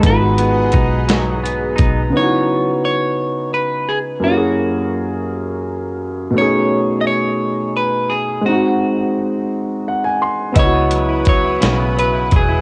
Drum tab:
HH |xxxxxx|------|------|------|
SD |---o--|------|------|------|
BD |o-o--o|------|------|------|

HH |------|xxxxxx|
SD |------|---o--|
BD |------|o-o--o|